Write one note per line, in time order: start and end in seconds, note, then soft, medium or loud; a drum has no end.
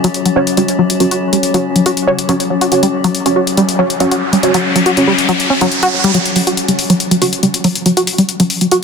0.00 6.19 F#3 medium
0.00 0.34 C#4 medium
0.00 6.19 C#4 medium
0.00 0.34 F#4 medium
0.00 0.34 C#5 medium
0.04 0.07 F#3 loud
0.04 closed hi-hat medium
0.14 closed hi-hat medium
0.26 0.30 F#3 medium
0.26 closed hi-hat medium
0.36 0.46 C#4 medium
0.36 0.41 F#4 medium
0.36 0.46 F#4 medium
0.36 0.46 C#5 loud
0.47 closed hi-hat medium
0.57 0.63 G3 medium
0.57 0.64 C#4 medium
0.57 0.64 F#4 medium
0.57 0.64 C#5 medium
0.57 closed hi-hat medium
0.68 closed hi-hat medium
0.79 0.82 F#3 medium
0.90 closed hi-hat medium
1.00 1.05 F#3 medium
1.00 1.52 C#4 medium
1.00 1.52 F#4 medium
1.00 1.52 C#5 medium
1.00 closed hi-hat medium
1.11 1.16 F#4 medium
1.11 closed hi-hat medium
1.33 1.38 G3 medium
1.33 closed hi-hat medium
1.43 closed hi-hat medium
1.54 1.57 F#3 loud
1.54 2.05 C#4 medium
1.54 2.05 F#4 medium
1.54 2.05 C#5 medium
1.54 closed hi-hat medium
1.76 1.80 F#3 medium
1.76 closed hi-hat medium
1.86 1.91 F#4 medium
1.86 closed hi-hat medium
1.97 closed hi-hat medium
2.07 2.13 G3 medium
2.07 2.18 C#4 medium
2.07 2.18 F#4 medium
2.07 2.18 C#5 loud
2.19 closed hi-hat medium
2.29 2.32 F#3 medium
2.29 2.35 C#4 medium
2.29 2.35 F#4 medium
2.29 2.35 C#5 medium
2.29 closed hi-hat medium
2.40 closed hi-hat medium
2.50 2.55 F#3 medium
2.61 2.66 F#4 medium
2.61 closed hi-hat medium
2.72 3.23 C#4 medium
2.72 3.23 F#4 medium
2.72 3.23 C#5 medium
2.72 closed hi-hat medium
2.72 riser medium
2.83 2.88 G3 medium
2.83 closed hi-hat medium
3.04 3.07 F#3 loud
3.04 closed hi-hat medium
3.15 closed hi-hat medium
3.26 3.31 F#3 medium
3.26 3.76 C#4 medium
3.26 3.76 F#4 medium
3.26 3.76 C#5 medium
3.26 closed hi-hat medium
3.36 3.41 F#4 medium
3.47 closed hi-hat medium
3.57 3.63 G3 medium
3.57 closed hi-hat medium
3.69 closed hi-hat medium
3.79 3.82 F#3 loud
3.79 3.89 C#4 medium
3.79 3.89 F#4 medium
3.79 3.89 C#5 loud
3.90 closed hi-hat medium
4.00 4.06 F#3 medium
4.00 4.07 C#4 medium
4.00 4.07 F#4 medium
4.00 4.07 C#5 medium
4.00 closed hi-hat medium
4.11 4.16 F#4 medium
4.11 closed hi-hat medium
4.33 4.38 G3 medium
4.33 closed hi-hat medium
4.43 4.94 C#4 medium
4.43 4.94 F#4 medium
4.43 4.94 C#5 medium
4.43 closed hi-hat medium
4.54 4.57 F#3 loud
4.54 closed hi-hat medium
4.76 4.80 F#3 medium
4.76 closed hi-hat medium
4.86 4.91 F#4 medium
4.86 closed hi-hat medium
4.97 5.48 C#4 medium
4.97 5.48 F#4 medium
4.97 5.48 C#5 medium
4.97 closed hi-hat medium
5.07 5.13 G3 medium
5.18 closed hi-hat medium
5.29 5.32 F#3 loud
5.29 closed hi-hat medium
5.40 closed hi-hat medium
5.50 5.53 C#4 medium
5.61 5.66 F#3 loud
5.61 5.67 C#4 medium
5.61 5.67 F#4 medium
5.61 5.67 C#5 loud
5.61 closed hi-hat medium
5.72 closed hi-hat medium
5.83 5.88 F#4 loud
5.83 closed hi-hat medium
6.04 6.11 G3 loud
6.04 closed hi-hat medium
6.14 6.18 F#3 loud
6.14 6.66 C#4 medium
6.14 closed hi-hat medium
6.26 closed hi-hat medium
6.36 6.41 F#3 medium
6.36 open hi-hat loud
6.47 6.52 F#4 medium
6.47 closed hi-hat medium
6.57 closed hi-hat medium
6.68 6.73 G3 medium
6.68 7.19 C#4 medium
6.68 7.19 F#4 medium
6.68 7.19 C#5 medium
6.68 closed hi-hat medium
6.79 open hi-hat medium
6.90 6.93 F#3 loud
6.90 closed hi-hat medium
7.00 closed hi-hat medium
7.11 7.16 F#3 medium
7.11 closed hi-hat medium
7.21 7.32 C#4 medium
7.21 7.32 F#4 medium
7.21 7.27 F#4 medium
7.21 7.32 C#5 loud
7.21 open hi-hat loud
7.33 closed hi-hat medium
7.43 7.48 G3 medium
7.43 7.50 C#4 medium
7.43 7.50 F#4 medium
7.43 7.50 C#5 medium
7.43 closed hi-hat medium
7.54 closed hi-hat medium
7.64 7.68 F#3 loud
7.64 open hi-hat medium
7.75 closed hi-hat medium
7.86 7.91 F#3 medium
7.86 8.37 C#4 medium
7.86 8.37 C#5 medium
7.86 closed hi-hat medium
7.97 8.02 F#4 medium
7.97 closed hi-hat medium
8.07 open hi-hat loud
8.18 8.23 G3 medium
8.18 closed hi-hat medium
8.29 closed hi-hat medium
8.40 8.43 F#3 loud
8.40 8.84 C#4 medium
8.40 8.84 F#4 medium
8.40 8.84 C#5 medium
8.40 closed hi-hat medium
8.50 open hi-hat loud
8.61 8.66 F#3 medium
8.61 closed hi-hat medium
8.71 8.77 F#4 medium
8.71 closed hi-hat medium